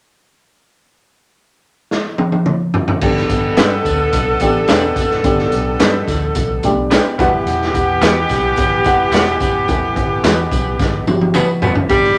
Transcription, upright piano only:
3.02 3.81 B3 medium
3.02 3.81 D4 medium
3.02 3.81 G4 medium
4.42 5.01 B3 medium
4.42 5.01 D4 medium
4.42 5.01 G4 medium
5.24 6.03 B3 medium
5.24 6.03 D4 medium
5.24 6.03 G4 medium
6.64 6.70 A3 medium
6.64 7.19 D4 medium
6.64 7.20 G4 medium
6.70 7.22 B3 medium
7.19 8.08 G3 medium
7.19 8.08 E4 medium
7.19 8.08 F#5 medium
8.86 9.44 G3 medium
8.86 9.45 E4 medium
8.86 9.45 F#5 medium
9.68 10.47 G3 medium
9.68 10.47 E4 medium
9.68 10.47 A4 medium
11.07 11.13 F#3 medium
11.07 11.66 E4 medium
11.07 11.66 F#4 medium
11.13 11.69 G3 medium
11.89 12.18 B3 medium
11.89 12.18 D4 medium
11.89 12.18 G4 medium

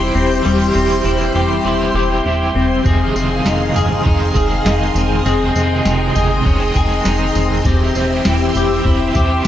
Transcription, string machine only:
0.00 2.81 G4 medium
0.00 2.81 C5 medium
0.00 2.81 G5 medium
0.00 7.60 C6 medium
2.86 7.61 G#4 medium
2.86 7.62 D#5 medium
2.86 5.23 F5 medium
5.26 7.63 G5 medium
7.65 9.48 G4 medium
7.65 9.48 C5 medium
7.65 9.48 E5 medium
7.65 9.48 C6 loud

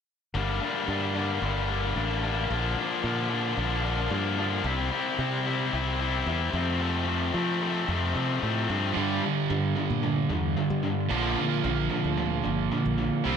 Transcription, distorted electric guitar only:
0.34 0.59 G2 medium
0.34 0.59 D3 medium
0.34 0.60 G3 medium
0.34 0.61 A#3 medium
0.34 0.62 D4 medium
0.60 0.87 G2 medium
0.60 0.87 D3 medium
0.60 0.88 G3 medium
0.60 0.89 A#3 medium
0.60 0.89 D4 medium
0.88 1.13 G2 medium
0.88 1.14 D3 medium
0.88 1.14 G3 medium
0.88 1.15 A#3 medium
0.88 1.16 D4 medium
1.15 1.40 G2 medium
1.15 1.41 D3 medium
1.15 1.42 G3 medium
1.15 1.42 A#3 medium
1.15 1.43 D4 medium
1.42 1.67 G2 medium
1.42 1.68 D3 medium
1.42 1.68 G3 medium
1.42 1.69 A#3 medium
1.42 1.69 D4 medium
1.68 1.94 G2 medium
1.68 1.95 D3 medium
1.68 1.96 G3 medium
1.68 1.96 A#3 medium
1.68 1.96 D4 medium
1.95 2.21 G2 medium
1.95 2.22 D3 medium
1.95 2.22 G3 medium
1.95 2.23 A#3 medium
1.95 2.23 D4 loud
2.22 2.48 G2 medium
2.22 2.48 D3 medium
2.22 2.49 G3 medium
2.22 2.49 A#3 medium
2.22 2.49 D4 medium
2.50 2.75 A#2 medium
2.50 2.76 D3 medium
2.50 2.76 F3 medium
2.50 2.77 A#3 loud
2.50 2.77 D4 medium
2.77 3.02 A#2 medium
2.77 3.03 D3 medium
2.77 3.03 F3 medium
2.77 3.03 A#3 medium
2.77 3.04 D4 medium
3.03 3.29 A#2 medium
3.03 3.29 D3 medium
3.03 3.29 F3 medium
3.03 3.30 A#3 medium
3.03 3.30 D4 medium
3.30 3.56 A#2 medium
3.30 3.57 D3 medium
3.30 3.57 F3 medium
3.30 3.57 A#3 medium
3.30 3.57 D4 medium
3.57 3.82 A#2 medium
3.57 3.83 D3 medium
3.57 3.83 F3 medium
3.57 3.83 A#3 medium
3.57 3.84 D4 loud
3.83 4.09 A#2 medium
3.83 4.09 D3 medium
3.83 4.10 F3 medium
3.83 4.10 A#3 medium
3.83 4.11 D4 medium
4.10 4.36 A#2 medium
4.10 4.36 D3 medium
4.10 4.37 F3 medium
4.10 4.38 A#3 loud
4.10 4.38 D4 loud
4.37 4.63 A#2 medium
4.37 4.63 D3 medium
4.37 4.63 F3 medium
4.37 4.64 A#3 medium
4.37 4.64 D4 medium
4.64 4.89 C3 medium
4.64 4.90 G3 medium
4.64 4.92 C4 medium
4.64 4.91 E4 medium
4.91 5.17 C3 medium
4.91 5.18 G3 medium
4.91 5.18 C4 medium
4.91 5.18 E4 medium
5.18 5.44 C3 medium
5.18 5.45 G3 medium
5.18 5.46 C4 medium
5.18 5.46 E4 medium
5.46 5.71 C3 medium
5.46 5.72 G3 medium
5.46 5.72 C4 medium
5.46 5.73 E4 medium
5.72 5.98 C3 medium
5.72 5.99 G3 medium
5.72 5.99 C4 loud
5.72 6.00 E4 loud
6.00 6.25 C3 medium
6.00 6.26 G3 medium
6.00 6.27 C4 medium
6.00 6.27 E4 medium
6.27 6.52 C3 medium
6.27 6.52 G3 loud
6.27 6.52 C4 loud
6.27 6.53 E4 medium
6.54 6.79 F2 medium
6.54 6.80 C3 medium
6.54 6.80 F3 medium
6.54 6.80 A3 medium
6.54 6.81 C4 loud
6.80 7.06 F2 medium
6.80 7.06 C3 medium
6.80 7.07 F3 medium
6.80 7.06 A3 loud
6.80 7.07 C4 medium
7.07 7.32 F2 medium
7.07 7.32 C3 medium
7.07 7.32 F3 medium
7.07 7.33 A3 medium
7.07 7.33 C4 medium
7.33 7.59 F2 medium
7.33 7.59 C3 medium
7.33 7.60 F3 medium
7.33 7.60 A3 medium
7.33 7.61 C4 medium
7.60 7.86 F2 medium
7.60 7.87 C3 medium
7.60 7.87 F3 medium
7.60 7.88 A3 medium
7.60 7.88 C4 medium
7.87 8.13 F2 medium
7.87 8.14 C3 medium
7.87 8.14 F3 loud
7.87 8.15 A3 medium
7.87 8.15 C4 loud
8.14 8.40 F2 medium
8.14 8.41 C3 medium
8.14 8.42 F3 medium
8.14 8.42 A3 medium
8.14 8.42 C4 medium
8.42 8.68 F2 medium
8.42 8.69 C3 medium
8.42 8.70 F3 medium
8.42 8.69 A3 loud
8.42 8.70 C4 loud
8.70 8.94 F2 medium
8.70 8.94 C3 medium
8.70 8.95 F3 medium
8.70 8.95 A3 medium
8.70 8.95 C4 medium
8.96 9.21 G2 medium
8.96 9.21 D3 medium
8.96 9.21 G3 medium
9.23 9.46 G2 medium
9.23 9.47 D3 medium
9.50 9.73 G2 medium
9.50 9.73 D3 medium
9.76 10.00 G2 medium
9.76 10.00 D3 medium
10.03 10.27 G2 medium
10.03 10.27 D3 medium
10.29 10.53 G2 medium
10.29 10.54 D3 medium
10.57 10.81 G2 medium
10.57 10.81 D3 medium
10.83 11.07 G2 medium
10.83 11.07 D3 medium
11.09 11.35 A#2 medium
11.09 11.35 D3 medium
11.09 11.35 F3 medium
11.37 11.61 A#2 medium
11.37 11.61 D3 medium
11.64 11.88 A#2 medium
11.64 11.88 D3 medium
11.90 12.14 A#2 medium
11.90 12.15 D3 medium
12.17 12.41 A#2 medium
12.17 12.42 D3 medium
12.43 12.68 A#2 medium
12.43 12.68 D3 medium
12.71 12.95 A#2 medium
12.71 12.96 D3 medium
12.98 13.22 A#2 medium
12.98 13.22 D3 medium
13.24 13.37 C3 medium
13.24 13.37 G3 medium
13.24 13.37 C4 medium

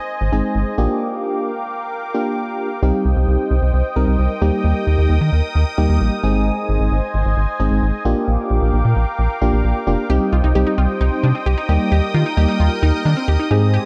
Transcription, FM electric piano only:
0.33 0.78 G#3 medium
0.33 0.78 C4 medium
0.33 0.78 D#4 medium
0.33 0.78 G#4 medium
0.78 1.51 A#3 medium
0.78 1.51 D4 medium
0.78 1.51 F4 medium
0.78 1.51 G4 loud
2.14 2.68 A#3 medium
2.14 2.68 D4 medium
2.14 2.68 F4 medium
2.14 2.68 G4 medium
2.83 3.55 G3 medium
2.83 3.55 C4 medium
2.83 3.55 D#4 medium
2.83 3.55 G4 medium
3.96 4.32 G3 medium
3.96 4.32 C4 medium
3.96 4.32 D#4 medium
3.96 4.32 A#4 medium
4.42 5.14 G3 medium
4.42 5.14 A#3 medium
4.42 5.14 D#4 medium
4.42 5.14 G4 medium
5.78 6.14 G3 medium
5.78 6.14 A#3 medium
5.78 6.14 D#4 medium
5.78 6.14 G4 medium
6.23 6.96 G#3 medium
6.23 6.96 C4 medium
6.23 6.96 D#4 medium
6.23 6.96 G#4 loud
7.60 7.96 G#3 medium
7.60 7.96 C4 medium
7.60 7.96 D#4 medium
7.60 7.96 G#4 medium
8.05 8.78 A#3 medium
8.05 8.78 D4 medium
8.05 8.78 F4 medium
8.05 8.78 G4 loud
9.42 9.78 A#3 medium
9.42 9.78 D4 medium
9.42 9.78 F4 medium
9.42 9.78 G4 medium
9.87 10.05 A#3 medium
9.87 10.05 D4 medium
9.87 10.05 F4 medium
9.87 10.05 G4 medium
10.10 10.46 G3 medium
10.10 10.46 C4 medium
10.10 10.46 D#4 medium
10.10 10.46 G4 medium
10.55 11.27 G3 medium
10.55 11.27 C4 medium
10.55 11.27 D#4 medium
10.55 11.27 G4 medium
11.69 12.23 G3 medium
11.69 12.23 A#3 medium
11.69 12.23 D#4 medium
11.69 12.23 G4 loud
12.37 13.09 G3 medium
12.37 13.09 A#3 medium
12.37 13.09 D#4 medium
12.37 13.09 G4 loud
13.51 13.85 G#3 medium
13.51 13.85 C4 medium
13.51 13.85 D#4 medium
13.51 13.85 G#4 loud

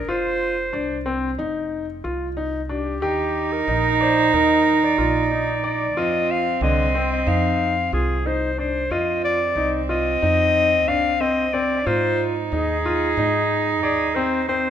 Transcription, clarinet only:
0.00 0.11 A#4 medium
0.09 1.07 C5 medium
2.71 3.54 G4 medium
3.52 4.04 A#4 medium
4.02 4.36 C5 medium
4.34 4.86 A#4 medium
4.84 4.99 D5 medium
4.99 6.00 D5 medium
5.99 6.32 D#5 medium
6.31 6.62 F5 medium
6.63 7.08 D#5 medium
7.12 7.29 D#5 medium
7.28 7.92 F5 medium
7.93 8.28 G#4 medium
8.27 8.59 C5 medium
8.59 8.93 C5 medium
8.91 9.24 D#5 medium
9.24 9.73 D5 medium
9.90 10.90 D#5 medium
10.88 11.22 F5 medium
11.21 11.55 D#5 medium
11.53 11.88 D5 medium
11.86 12.25 C5 medium
12.52 13.79 G#4 medium
13.82 14.17 G#4 medium
14.15 14.48 C5 medium
14.48 14.70 C5 medium

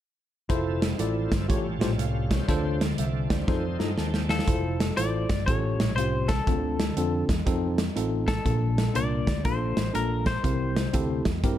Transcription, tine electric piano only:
0.49 0.82 E4 loud
0.49 0.82 F4 medium
0.49 0.82 A4 medium
0.49 0.82 C5 loud
0.98 1.31 E4 medium
0.98 1.32 F4 medium
0.98 1.32 A4 medium
0.98 1.32 D5 medium
1.48 2.27 A2 medium
1.48 1.65 F4 medium
1.48 1.65 G4 medium
1.48 1.66 A4 medium
1.48 1.66 C#5 medium
1.80 1.90 F4 medium
1.80 1.90 G4 medium
1.80 1.90 A4 medium
1.80 1.91 C5 medium
1.99 2.29 F5 medium
2.32 2.79 C#5 medium
2.48 3.26 D3 medium
2.48 2.81 D4 medium
2.48 2.81 F4 medium
2.48 2.81 A4 medium
2.48 2.82 C5 loud
2.99 3.29 E5 medium
3.30 3.78 D5 medium
3.47 3.64 D#4 medium
3.47 3.64 F4 medium
3.47 3.65 A4 medium
3.47 3.65 C5 medium
3.79 3.89 D#4 medium
3.79 3.89 F4 medium
3.79 3.89 A4 medium
3.79 3.89 D#5 medium
3.98 4.28 A5 medium
4.30 4.77 F5 medium
4.47 4.80 E4 medium
4.47 4.80 F4 medium
4.47 4.80 A4 medium
4.47 4.80 C5 medium
4.97 5.29 E4 medium
4.97 5.30 F4 medium
4.97 5.30 A4 medium
4.97 5.30 C5 medium
5.48 6.25 A2 medium
5.48 5.80 C#4 medium
5.48 5.80 F4 medium
5.48 5.80 G4 medium
5.48 5.80 A4 medium
5.98 6.29 C#4 medium
5.98 6.30 F4 medium
5.98 6.30 G4 medium
5.98 6.30 C5 medium
6.48 7.25 D3 medium
6.48 6.79 C4 medium
6.48 6.79 D4 medium
6.48 6.80 F4 medium
6.48 6.80 A4 medium
6.97 7.29 C4 medium
6.97 7.29 D4 medium
6.97 7.29 F4 medium
6.97 7.30 A4 medium
7.46 7.78 C4 medium
7.46 7.78 D#4 medium
7.46 7.79 F4 medium
7.46 7.79 A4 loud
7.96 8.28 C4 medium
7.96 8.28 D#4 medium
7.96 8.28 F4 medium
7.96 8.29 A4 medium
8.45 9.23 A#2 medium
8.45 8.77 A#3 medium
8.45 8.78 D4 medium
8.45 8.78 F4 medium
8.45 8.78 A4 medium
8.94 9.27 A#3 medium
8.94 9.27 D4 medium
8.94 9.27 F4 medium
8.94 9.27 A#4 medium
9.44 9.77 A#3 medium
9.44 9.77 D4 medium
9.44 9.77 F4 medium
9.44 9.77 A4 medium
9.93 10.26 A#3 medium
9.93 10.26 D4 medium
9.93 10.26 F4 medium
9.93 10.27 A4 medium
10.44 11.22 C3 medium
10.44 10.76 C4 medium
10.44 10.76 E4 medium
10.44 10.76 G4 medium
10.44 10.77 A#4 medium
10.93 11.26 C4 medium
10.93 11.26 E4 medium
10.93 11.26 G4 medium
10.93 11.26 A4 medium
11.44 11.58 C4 medium
11.44 11.58 E4 medium
11.44 11.58 G4 medium
11.44 11.58 A#4 medium

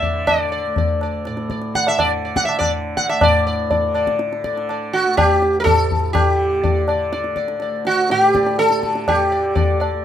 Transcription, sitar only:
0.00 0.25 D5 soft
0.00 0.29 E5 loud
0.27 0.51 D5 medium
0.52 0.75 D5 soft
0.78 1.00 D5 soft
1.03 1.25 D5 soft
1.27 1.49 D5 soft
1.51 1.73 D5 soft
1.75 1.88 F#5 loud
1.88 2.00 E5 medium
2.00 2.11 D5 medium
2.25 2.47 D5 soft
2.37 2.45 F#5 medium
2.45 2.58 E5 medium
2.59 2.71 D5 medium
2.97 3.09 F#5 medium
3.09 3.22 E5 medium
3.23 3.46 D5 medium
3.47 3.69 D5 soft
3.71 3.93 D5 soft
3.95 4.18 D5 soft
4.44 4.67 D5 soft
4.70 4.92 D5 soft
4.93 5.17 F#4 medium
5.17 5.56 G4 loud
5.60 5.64 A#4 medium
5.64 6.13 A4 loud
6.13 6.83 G4 medium
6.63 6.86 D5 soft
6.89 7.11 D5 soft
7.13 7.35 D5 soft
7.37 7.59 D5 soft
7.62 7.84 D5 soft
7.87 8.11 F#4 medium
8.11 8.23 F#4 loud
8.23 8.58 G4 loud
8.35 8.57 D5 soft
8.59 9.08 A4 loud
9.08 9.77 G4 medium
9.32 9.54 D5 soft
9.55 9.78 D5 soft
9.80 10.03 D5 soft

